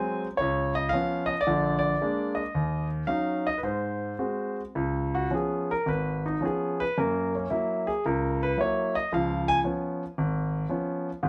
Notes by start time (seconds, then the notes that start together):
Already playing: F#3 G#3 C4 G#5
0.37 C#2 C#5
0.75 D#5
0.89 F3 F5
0.94 B3 C#4
1.26 D#5
1.41 D5
1.47 A#1 D3
1.79 D5
2.01 G#3 A#3 D4
2.35 D#5
2.55 D#2
3.07 F#3 C#4 D#4 F5
3.47 D#5
3.58 B4
3.63 G#2 C5
4.19 G#3 C4 F#4
4.75 C#2
5.15 F#4
5.30 F3 B3 C#4 G#4
5.71 A#4
5.86 G#1 B4
6.26 D#4
6.41 F3 B3 C#4
6.45 G#4
6.80 B4
6.98 F#2 A#3 A#4
7.35 C#4
7.50 F#3 A#3 E4
7.87 G#4
8.06 C#2 A#4
8.43 B4
8.57 F#3 A#3 E4 C#5
8.95 D#5
9.12 C#2 F3 F5
9.48 G#5
9.64 F3 B3 C#4
10.18 G#1
10.69 F3 B3 C#4
11.23 G#1 G#2